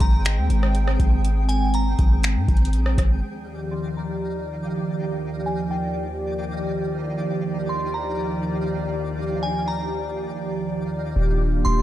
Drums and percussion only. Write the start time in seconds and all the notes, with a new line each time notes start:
0.00 kick, closed hi-hat
0.25 finger snap, closed hi-hat
0.50 closed hi-hat
0.63 cross-stick
0.75 closed hi-hat
0.88 cross-stick
1.00 kick, closed hi-hat
1.25 closed hi-hat
1.49 closed hi-hat
1.74 closed hi-hat
1.99 kick, closed hi-hat
2.23 finger snap, closed hi-hat
2.48 kick, closed hi-hat
2.57 closed hi-hat
2.65 closed hi-hat
2.73 closed hi-hat
2.86 cross-stick
2.98 kick, cross-stick, closed hi-hat